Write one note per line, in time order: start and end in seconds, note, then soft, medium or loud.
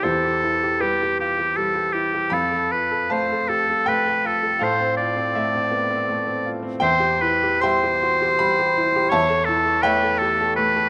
0.03 2.28 E2 soft
0.03 0.42 E4 soft
0.03 0.23 G4 soft
0.03 0.82 A4 medium
0.03 0.80 C5 medium
0.25 0.55 G4 soft
0.44 0.74 E4 soft
0.63 0.93 G4 soft
0.80 1.12 G3 soft
0.80 1.19 G4 soft
0.80 1.93 B4 medium
1.03 1.31 G4 soft
1.20 1.38 F4 soft
1.20 1.58 G4 soft
1.39 1.68 G4 soft
1.56 1.87 G3 soft
1.56 1.94 A4 medium
1.75 2.05 G4 soft
1.93 2.24 E4 soft
1.93 2.35 G4 soft
2.14 2.32 G4 soft
2.30 4.56 F2 soft
2.30 2.73 A4 medium
2.30 3.05 F5 medium
2.30 3.09 B5 medium
2.51 2.82 A4 soft
2.71 3.02 F4 soft
2.71 3.13 B4 soft
2.91 3.22 A4 soft
3.10 3.41 A3 soft
3.10 3.83 C5 soft
3.10 3.50 C5 medium
3.10 3.83 F5 soft
3.10 3.86 A5 medium
3.32 3.61 A4 soft
3.48 3.68 G4 soft
3.48 3.90 A4 medium
3.70 3.98 A4 soft
3.86 4.17 A3 soft
3.86 4.28 B4 medium
3.86 4.60 G5 medium
4.06 4.34 A4 soft
4.25 4.53 F4 soft
4.25 4.65 A4 medium
4.43 4.59 A4 soft
4.59 6.78 A2 soft
4.59 5.30 A4 medium
4.59 5.31 C5 medium
4.59 5.34 F5 medium
4.64 4.96 C5 medium
4.80 5.09 C4 soft
4.97 5.27 F4 soft
4.97 6.51 D5 medium
5.17 5.46 C4 soft
5.35 5.65 A3 soft
5.35 6.45 E5 medium
5.55 5.83 C4 soft
5.71 5.90 B3 soft
5.90 6.19 C4 soft
6.09 6.37 A3 soft
6.27 6.55 C4 soft
6.45 6.74 F4 soft
6.63 6.81 C4 soft
6.80 9.08 E2 medium
6.80 7.59 C5 medium
6.80 7.22 C5 medium
6.80 7.59 E5 medium
6.80 7.62 G5 medium
7.00 7.34 G4 soft
7.21 7.55 E4 soft
7.21 7.62 B4 medium
7.43 7.75 G4 soft
7.61 7.94 G3 soft
7.61 9.11 C5 medium
7.61 8.34 E5 medium
7.61 8.34 G5 medium
7.61 8.38 C6 medium
7.83 8.13 G4 soft
8.03 8.20 F#4 soft
8.22 8.50 G4 soft
8.39 8.69 G3 soft
8.39 9.12 B5 medium
8.59 8.87 G4 soft
8.78 9.05 E4 soft
8.96 9.13 G4 medium
9.09 10.89 E2 medium
9.09 9.46 C#5 medium
9.09 9.79 C#5 medium
9.09 9.79 E5 medium
9.09 9.83 A5 medium
9.30 9.57 A4 soft
9.45 9.76 E4 soft
9.45 9.84 A4 medium
9.66 9.94 A4 soft
9.82 10.13 A3 soft
9.82 10.20 B4 medium
9.82 10.89 C#5 medium
9.82 10.89 E5 medium
9.82 10.89 G5 medium
10.03 10.32 A4 soft
10.18 10.40 G4 soft
10.18 10.55 A4 medium
10.41 10.70 A4 medium
10.56 10.89 A3 soft
10.56 10.89 B4 medium
10.76 10.89 A4 soft